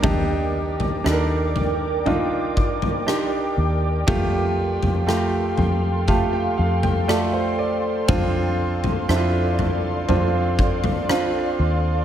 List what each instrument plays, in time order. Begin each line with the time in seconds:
0.03 fingered electric bass D#2, grand piano D#3 D4 D#4 G4, ambient pad A#4 D5 G5 D6, kick, floor tom
0.80 floor tom
1.04 fingered electric bass D#2, grand piano D4 D#4 A4, cross-stick
1.12 grand piano A#4
1.56 floor tom
2.06 grand piano D4 D#4 F4, floor tom
2.57 kick
2.82 floor tom
3.07 grand piano D4 D#4 G4, cross-stick
3.58 fingered electric bass D#2
4.07 fingered electric bass F2, grand piano A3 F4 G4, ambient pad A4 F5 C6, kick, floor tom
4.83 fingered electric bass F2, floor tom
5.07 grand piano A3 F4 G4, cross-stick
5.57 fingered electric bass F2, grand piano G5, floor tom
6.07 grand piano A3 F4 G4 A5, kick, floor tom
6.33 grand piano G5
6.58 fingered electric bass F2, grand piano F5
6.83 grand piano G5, floor tom
7.08 grand piano A3 F4 A4 D5, cross-stick
7.33 grand piano C5
7.59 grand piano D5
8.08 fingered electric bass F2, grand piano C4 D4 F4, ambient pad D5 F5, kick, floor tom
8.84 floor tom
9.08 fingered electric bass F2, grand piano C4 D4 E4, cross-stick
9.16 grand piano F4
9.59 floor tom
10.08 fingered electric bass F2, grand piano C4 D4 F4, floor tom
10.59 kick
10.84 floor tom
11.09 grand piano C4 D4 F4, cross-stick
11.59 fingered electric bass D#2